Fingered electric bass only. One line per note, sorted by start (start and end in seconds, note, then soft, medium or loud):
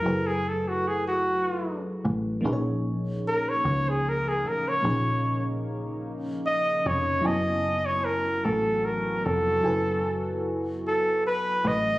0.05 2.01 F#1 medium
2.05 2.40 A1 loud
2.45 3.60 A#1 loud
3.65 4.45 C#2 loud
4.45 4.80 A1 medium
4.84 6.80 A#1 loud
6.86 7.21 F1 loud
7.25 8.40 F#1 loud
8.45 9.20 A1 loud
9.26 9.61 F1 medium
9.65 11.60 F#1 medium
11.64 11.99 A1 loud